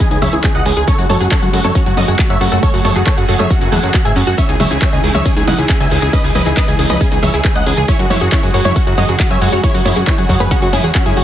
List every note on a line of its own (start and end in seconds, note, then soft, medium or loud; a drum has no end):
0.00 7.84 C#3 medium
0.00 0.84 E3 medium
0.00 4.34 G#3 medium
0.00 0.05 C#4 loud
0.00 0.84 D#4 medium
0.00 0.84 E4 medium
0.00 0.08 G#4 medium
0.00 kick loud
0.00 closed hi-hat loud
0.00 tambourine medium
0.11 0.18 C#2 medium
0.11 0.16 D#4 medium
0.11 0.19 G#4 medium
0.11 closed hi-hat soft
0.11 tambourine soft
0.22 0.29 C#2 loud
0.22 0.27 G#4 medium
0.22 0.30 C#5 medium
0.22 0.30 E5 medium
0.22 0.30 E5 loud
0.22 open hi-hat loud
0.22 mid tom medium
0.33 0.40 C#2 medium
0.33 0.36 E4 loud
0.33 0.41 G#4 medium
0.33 closed hi-hat soft
0.33 tambourine medium
0.44 0.52 C#4 medium
0.44 0.52 G#4 medium
0.44 kick loud
0.44 clap loud
0.44 closed hi-hat medium
0.44 tambourine medium
0.55 0.62 C#2 medium
0.55 0.63 D#5 medium
0.55 0.62 F#5 loud
0.55 0.63 F#5 medium
0.55 closed hi-hat soft
0.55 tambourine soft
0.66 0.73 C#2 loud
0.66 0.73 G#4 medium
0.66 0.71 G#4 medium
0.66 0.74 G#4 medium
0.66 open hi-hat loud
0.77 0.83 C#2 medium
0.77 0.84 G#4 medium
0.77 0.82 G#4 loud
0.77 closed hi-hat soft
0.77 tambourine medium
0.88 4.35 F#3 medium
0.88 4.35 A3 medium
0.88 0.93 C#4 loud
0.88 2.61 F#4 medium
0.88 0.95 A4 medium
0.88 0.95 C#5 medium
0.88 0.95 C#5 loud
0.88 kick loud
0.88 closed hi-hat medium
0.88 tambourine medium
0.98 1.05 F#2 medium
0.98 1.06 F#4 medium
0.98 1.04 F#4 medium
0.98 1.06 F#4 medium
0.98 closed hi-hat soft
0.98 tambourine soft
1.09 1.16 F#2 loud
1.09 1.17 A4 medium
1.09 1.15 A4 medium
1.09 1.17 C#5 medium
1.09 open hi-hat loud
1.09 mid tom medium
1.20 1.27 F#2 loud
1.20 1.28 F#4 medium
1.20 1.24 G#4 loud
1.20 closed hi-hat soft
1.20 tambourine medium
1.31 1.39 C#4 medium
1.31 1.39 A4 medium
1.31 1.39 C#5 medium
1.31 1.39 C#5 loud
1.31 kick loud
1.31 clap loud
1.31 closed hi-hat medium
1.31 tambourine medium
1.42 1.49 F#2 medium
1.42 1.50 F#4 medium
1.42 1.50 F#5 medium
1.42 closed hi-hat soft
1.42 tambourine soft
1.53 1.60 F#2 loud
1.53 1.61 F#4 medium
1.53 1.59 A4 medium
1.53 open hi-hat loud
1.64 1.71 F#2 medium
1.64 1.70 A4 loud
1.64 1.72 A4 medium
1.64 1.72 C#5 loud
1.64 closed hi-hat soft
1.64 mid tom medium
1.64 tambourine medium
1.75 1.80 C#4 loud
1.75 1.83 F#4 medium
1.75 kick loud
1.75 closed hi-hat medium
1.75 tambourine medium
1.86 1.93 F#2 medium
1.86 1.91 F#4 medium
1.86 1.94 F#4 medium
1.86 closed hi-hat soft
1.86 tambourine soft
1.97 2.04 F#2 loud
1.97 2.05 F#4 medium
1.97 2.02 A4 medium
1.97 2.05 D#5 loud
1.97 2.05 D#5 medium
1.97 open hi-hat loud
1.97 mid tom medium
2.08 2.15 F#2 medium
2.08 2.16 F#4 medium
2.08 2.11 G#4 loud
2.08 closed hi-hat soft
2.08 tambourine medium
2.19 2.27 C#4 medium
2.19 2.27 F#4 medium
2.19 kick loud
2.19 clap loud
2.19 closed hi-hat medium
2.19 tambourine soft
2.30 2.37 F#2 medium
2.30 2.38 C#5 medium
2.30 2.38 E5 loud
2.30 2.38 F#5 medium
2.30 closed hi-hat soft
2.30 tambourine soft
2.41 2.48 F#2 loud
2.41 2.49 F#4 medium
2.41 2.46 A4 medium
2.41 open hi-hat loud
2.52 2.59 F#2 medium
2.52 2.59 F#4 medium
2.52 2.60 F#4 medium
2.52 2.57 A4 loud
2.52 closed hi-hat soft
2.52 tambourine medium
2.63 2.68 C#4 loud
2.63 4.36 G#4 medium
2.63 2.71 A4 medium
2.63 2.70 C#5 loud
2.63 2.71 C#5 medium
2.63 kick loud
2.63 closed hi-hat medium
2.63 tambourine medium
2.74 2.81 F#2 medium
2.74 2.81 F#4 medium
2.74 2.79 F#4 medium
2.74 2.81 F#4 medium
2.74 open hi-hat medium
2.74 tambourine soft
2.85 2.92 F#2 loud
2.85 2.90 A4 medium
2.85 2.92 A4 medium
2.85 2.92 C#5 medium
2.85 2.93 C#5 medium
2.85 open hi-hat loud
2.85 mid tom medium
2.96 3.03 F#2 medium
2.96 3.03 F#4 medium
2.96 2.99 G#4 loud
2.96 closed hi-hat soft
2.96 tambourine medium
3.07 3.14 C#4 medium
3.07 3.14 A4 medium
3.07 3.14 C#5 loud
3.07 kick loud
3.07 clap loud
3.07 closed hi-hat medium
3.07 tambourine medium
3.17 3.24 F#2 medium
3.17 3.25 F#4 medium
3.17 3.25 F#5 medium
3.17 closed hi-hat soft
3.17 tambourine soft
3.28 3.35 F#2 loud
3.28 3.36 F#4 medium
3.28 3.34 A4 medium
3.28 open hi-hat loud
3.39 3.46 F#2 loud
3.39 3.45 A4 loud
3.39 3.47 C#5 medium
3.39 3.47 E5 medium
3.39 3.47 E5 loud
3.39 mid tom medium
3.39 tambourine medium
3.50 3.56 C#4 loud
3.50 3.58 F#4 medium
3.50 kick loud
3.50 closed hi-hat medium
3.50 tambourine medium
3.61 3.68 F#2 medium
3.61 3.69 F#4 medium
3.61 3.67 F#4 medium
3.61 closed hi-hat soft
3.61 tambourine soft
3.72 3.79 E2 loud
3.72 3.76 G#4 medium
3.72 3.80 A4 medium
3.72 3.80 F#5 medium
3.72 3.80 F#5 loud
3.72 open hi-hat loud
3.72 mid tom medium
3.83 3.90 F#2 medium
3.83 3.91 F#4 medium
3.83 3.86 C#5 medium
3.83 closed hi-hat soft
3.83 tambourine medium
3.94 4.02 F#4 medium
3.94 3.99 G#4 medium
3.94 kick loud
3.94 clap loud
3.94 closed hi-hat medium
3.94 tambourine medium
4.05 4.12 G#2 medium
4.05 4.10 G#4 loud
4.05 4.13 E5 medium
4.05 4.13 G#5 loud
4.05 closed hi-hat soft
4.05 tambourine soft
4.16 4.23 F#2 loud
4.16 4.21 C#4 medium
4.16 4.24 F#4 medium
4.16 open hi-hat loud
4.27 4.34 F#2 medium
4.27 4.35 F#4 medium
4.27 4.35 F#4 loud
4.27 4.35 F#4 medium
4.27 closed hi-hat soft
4.27 tambourine medium
4.38 7.85 E3 medium
4.38 11.24 G#3 medium
4.38 4.43 C#4 loud
4.38 7.85 D#4 medium
4.38 7.85 E4 medium
4.38 4.46 C#5 medium
4.38 4.46 E5 loud
4.38 4.46 E5 medium
4.38 kick loud
4.38 closed hi-hat medium
4.38 ride medium
4.38 tambourine medium
4.49 4.56 C#2 medium
4.49 4.54 D#4 medium
4.49 4.57 G#4 medium
4.49 closed hi-hat soft
4.49 tambourine soft
4.60 4.67 C#2 loud
4.60 4.65 G#4 medium
4.60 4.67 C#5 medium
4.60 4.68 E5 medium
4.60 open hi-hat loud
4.60 mid tom medium
4.71 4.78 C#2 loud
4.71 4.74 E4 loud
4.71 4.78 G#4 medium
4.71 4.79 G#4 medium
4.71 closed hi-hat soft
4.71 tambourine medium
4.82 4.90 C#4 medium
4.82 4.90 C#5 medium
4.82 4.90 E5 medium
4.82 4.90 E5 loud
4.82 kick loud
4.82 clap loud
4.82 closed hi-hat loud
4.82 ride medium
4.82 tambourine medium
4.93 5.00 C#2 medium
4.93 5.00 G#4 medium
4.93 5.01 G#4 medium
4.93 5.01 D#5 medium
4.93 closed hi-hat soft
4.93 tambourine soft
5.04 5.11 C#2 loud
5.04 5.09 G#4 medium
5.04 5.11 G#4 medium
5.04 open hi-hat loud
5.14 5.22 C#2 medium
5.14 5.20 G#4 loud
5.14 5.22 C#5 medium
5.14 5.22 E5 loud
5.14 5.22 E5 medium
5.14 closed hi-hat soft
5.14 mid tom medium
5.14 tambourine medium
5.25 5.31 C#4 loud
5.25 5.33 G#4 medium
5.25 kick loud
5.25 closed hi-hat medium
5.25 ride medium
5.25 tambourine medium
5.36 5.43 C#2 medium
5.36 5.42 D#4 medium
5.36 5.44 G#4 medium
5.36 closed hi-hat soft
5.36 tambourine soft
5.47 5.54 C#2 loud
5.47 5.53 G#4 medium
5.47 5.55 D#5 medium
5.47 5.55 F#5 loud
5.47 open hi-hat loud
5.47 mid tom medium
5.58 5.65 C#2 medium
5.58 5.62 E4 medium
5.58 5.66 G#4 medium
5.58 closed hi-hat soft
5.58 tambourine medium
5.69 5.77 C#4 medium
5.69 5.77 G#4 medium
5.69 kick loud
5.69 clap loud
5.69 closed hi-hat medium
5.69 ride medium
5.69 tambourine medium
5.80 5.87 C#2 medium
5.80 5.88 D#5 medium
5.80 5.88 E5 medium
5.80 5.88 G#5 medium
5.80 5.88 G#5 loud
5.80 closed hi-hat soft
5.80 tambourine soft
5.91 5.98 C#2 loud
5.91 5.97 G#4 medium
5.91 5.99 G#4 medium
5.91 open hi-hat loud
6.02 6.09 C#2 medium
6.02 6.07 G#4 loud
6.02 6.10 G#4 medium
6.02 closed hi-hat soft
6.02 tambourine medium
6.13 6.18 C#4 loud
6.13 6.21 B4 medium
6.13 6.21 D#5 medium
6.13 6.21 D#5 loud
6.13 kick loud
6.13 closed hi-hat medium
6.13 ride medium
6.13 tambourine medium
6.24 6.31 C#2 medium
6.24 6.29 D#4 medium
6.24 6.32 G#4 medium
6.24 open hi-hat medium
6.24 tambourine soft
6.35 6.42 C#2 loud
6.35 6.40 G#4 medium
6.35 6.43 B4 medium
6.35 6.43 D#5 medium
6.35 open hi-hat loud
6.35 mid tom medium
6.46 6.53 C#2 loud
6.46 6.49 E4 loud
6.46 6.54 G#4 medium
6.46 closed hi-hat soft
6.46 tambourine medium
6.57 6.65 C#4 medium
6.57 6.65 B4 medium
6.57 6.65 D#5 medium
6.57 kick loud
6.57 clap loud
6.57 closed hi-hat loud
6.57 ride medium
6.57 tambourine medium
6.68 6.75 C#2 medium
6.68 6.76 G#4 medium
6.68 6.76 D#5 medium
6.68 closed hi-hat soft
6.68 tambourine soft
6.79 6.86 C#2 loud
6.79 6.84 G#4 medium
6.79 6.87 G#4 medium
6.79 open hi-hat loud
6.90 6.97 C#2 loud
6.90 6.95 G#4 loud
6.90 6.98 B4 medium
6.90 6.98 D#5 loud
6.90 mid tom medium
6.90 tambourine medium
7.01 7.06 C#4 loud
7.01 7.09 G#4 medium
7.01 kick loud
7.01 closed hi-hat medium
7.01 ride medium
7.01 tambourine medium
7.11 7.19 C#2 medium
7.11 7.17 D#4 medium
7.11 7.19 G#4 medium
7.11 7.20 G#4 medium
7.11 closed hi-hat soft
7.11 tambourine soft
7.23 7.30 C#2 loud
7.23 7.28 G#4 medium
7.23 7.30 C#5 medium
7.23 7.30 E5 loud
7.23 open hi-hat loud
7.23 mid tom medium
7.34 7.41 C#2 medium
7.34 7.37 E4 loud
7.34 7.41 G#4 medium
7.34 closed hi-hat soft
7.34 tambourine medium
7.45 7.52 C#4 medium
7.45 7.52 G#4 medium
7.45 kick loud
7.45 clap loud
7.45 closed hi-hat medium
7.45 ride medium
7.45 tambourine medium
7.55 7.62 C#2 medium
7.55 7.63 D#5 medium
7.55 7.63 F#5 loud
7.55 closed hi-hat soft
7.55 tambourine soft
7.66 7.73 C#2 loud
7.66 7.74 G#4 medium
7.66 7.72 G#4 medium
7.66 7.74 G#4 medium
7.66 open hi-hat loud
7.77 7.84 C#2 medium
7.77 7.85 G#4 medium
7.77 7.83 G#4 loud
7.77 7.85 G#4 medium
7.77 closed hi-hat soft
7.77 tambourine medium
7.88 11.24 C#3 medium
7.88 11.24 F#3 medium
7.88 7.94 C#4 loud
7.88 7.96 E4 medium
7.88 11.24 F#4 medium
7.88 11.24 G#4 medium
7.88 7.96 C#5 loud
7.88 7.96 C#5 medium
7.88 kick loud
7.88 closed hi-hat medium
7.88 ride medium
7.88 tambourine medium
7.99 8.06 F#2 medium
7.99 8.07 F#4 medium
7.99 8.05 F#4 medium
7.99 8.07 F#4 medium
7.99 closed hi-hat soft
7.99 tambourine soft
8.10 8.17 F#2 loud
8.10 8.18 E4 medium
8.10 8.15 C#5 medium
8.10 8.18 C#5 medium
8.10 open hi-hat loud
8.10 mid tom medium
8.21 8.28 F#2 loud
8.21 8.29 F#4 medium
8.21 8.24 G#4 loud
8.21 closed hi-hat soft
8.21 tambourine medium
8.32 8.40 C#4 medium
8.32 8.40 E4 medium
8.32 8.40 C#5 medium
8.32 8.40 C#5 loud
8.32 kick loud
8.32 clap loud
8.32 closed hi-hat loud
8.32 ride medium
8.32 tambourine medium
8.43 8.50 F#2 medium
8.43 8.51 F#4 medium
8.43 8.51 G#5 medium
8.43 closed hi-hat soft
8.43 tambourine soft
8.54 8.61 F#2 loud
8.54 8.62 F#4 medium
8.54 8.59 C#5 medium
8.54 open hi-hat loud
8.65 8.72 F#2 medium
8.65 8.73 E4 medium
8.65 8.70 C#5 loud
8.65 8.73 C#5 loud
8.65 closed hi-hat soft
8.65 mid tom medium
8.65 tambourine medium
8.76 8.81 C#4 loud
8.76 8.84 F#4 medium
8.76 kick loud
8.76 closed hi-hat loud
8.76 ride medium
8.76 tambourine medium
8.87 8.94 F#2 medium
8.87 8.95 F#4 medium
8.87 8.92 F#4 medium
8.87 8.95 F#4 medium
8.87 closed hi-hat soft
8.87 tambourine soft
8.98 9.05 F#2 loud
8.98 9.05 F#4 medium
8.98 9.03 C#5 medium
8.98 9.05 D#5 medium
8.98 9.06 D#5 loud
8.98 open hi-hat loud
8.98 mid tom medium
9.09 9.16 F#2 medium
9.09 9.17 F#4 medium
9.09 9.12 G#4 loud
9.09 closed hi-hat soft
9.09 tambourine medium
9.20 9.28 C#4 medium
9.20 9.27 F#4 medium
9.20 9.28 F#4 medium
9.20 kick loud
9.20 clap loud
9.20 closed hi-hat loud
9.20 ride medium
9.20 tambourine medium
9.31 9.38 F#2 medium
9.31 9.38 C#5 medium
9.31 9.38 E5 medium
9.31 9.38 E5 loud
9.31 9.39 G#5 medium
9.31 closed hi-hat soft
9.31 tambourine soft
9.42 9.48 F#2 loud
9.42 9.49 F#4 medium
9.42 9.47 C#5 medium
9.42 open hi-hat loud
9.53 9.59 F#2 medium
9.53 9.60 F#4 medium
9.53 9.58 C#5 loud
9.53 closed hi-hat soft
9.53 tambourine medium
9.63 9.69 C#4 loud
9.63 9.71 E4 medium
9.63 9.71 C#5 loud
9.63 9.71 C#5 medium
9.63 kick loud
9.63 closed hi-hat loud
9.63 ride medium
9.63 tambourine soft
9.74 9.81 F#2 medium
9.74 9.80 F#4 medium
9.74 9.82 F#4 medium
9.74 open hi-hat medium
9.74 tambourine soft
9.85 9.92 F#2 loud
9.85 9.93 E4 medium
9.85 9.91 C#5 medium
9.85 9.93 C#5 medium
9.85 open hi-hat loud
9.85 mid tom medium
9.96 10.03 F#2 loud
9.96 10.04 F#4 medium
9.96 9.99 G#4 loud
9.96 closed hi-hat soft
9.96 tambourine medium
10.07 10.15 C#4 medium
10.07 10.15 E4 medium
10.07 10.15 C#5 medium
10.07 10.15 C#5 loud
10.07 kick loud
10.07 clap loud
10.07 closed hi-hat loud
10.07 ride medium
10.07 tambourine medium
10.18 10.25 F#2 medium
10.18 10.26 F#4 medium
10.18 10.26 G#5 medium
10.18 closed hi-hat soft
10.18 tambourine soft
10.29 10.36 F#2 medium
10.29 10.37 F#4 medium
10.29 10.34 C#5 medium
10.29 kick medium
10.29 open hi-hat loud
10.40 10.47 F#2 loud
10.40 10.48 G#4 medium
10.40 10.48 B4 medium
10.40 10.48 B4 loud
10.40 10.45 C#5 loud
10.40 closed hi-hat soft
10.40 mid tom medium
10.40 tambourine medium
10.51 10.56 C#4 loud
10.51 10.59 F#4 medium
10.51 kick loud
10.51 closed hi-hat loud
10.51 ride medium
10.51 tambourine medium
10.51 swell medium
10.62 10.69 F#2 medium
10.62 10.67 F#4 medium
10.62 10.70 F#4 medium
10.62 closed hi-hat soft
10.62 tambourine soft
10.73 10.80 F#2 loud
10.73 10.81 E4 medium
10.73 10.81 G#4 loud
10.73 10.81 G#4 medium
10.73 10.78 C#5 medium
10.73 open hi-hat loud
10.73 mid tom medium
10.84 10.91 E2 medium
10.84 10.92 F#4 medium
10.84 10.87 G#4 loud
10.84 closed hi-hat soft
10.84 tambourine medium
10.95 11.03 C#4 medium
10.95 11.03 F#4 medium
10.95 kick loud
10.95 clap loud
10.95 closed hi-hat loud
10.95 ride medium
10.95 tambourine medium
11.06 11.13 F#2 loud
11.06 11.14 E4 medium
11.06 11.14 G#4 loud
11.06 11.14 G#4 medium
11.06 11.14 G#5 medium
11.06 closed hi-hat soft
11.06 tambourine soft
11.17 11.24 F#1 loud
11.17 11.24 F#4 medium
11.17 11.22 C#5 medium
11.17 open hi-hat loud